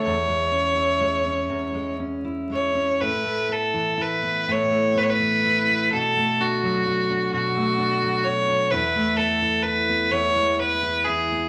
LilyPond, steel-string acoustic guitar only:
\new Staff \with { instrumentName = "Steel-string acoustic guitar" } { \time 6/8 \key a \major \tempo 4. = 42 e,16 gis16 cis'16 e'16 gis16 cis'16 e,16 gis16 cis'16 e'16 gis16 cis'16 | <a, e'>16 a16 b16 e16 e'16 b16 <a, e'>16 a16 b16 e16 e'16 b16 | <b, fis'>16 a16 d'16 fis16 fis'16 d'16 <b, fis'>16 a16 d'16 fis16 fis'16 d'16 | <e, e'>16 a16 b16 e16 e'16 b16 <e, e'>16 gis16 b16 e16 e'16 b16 | }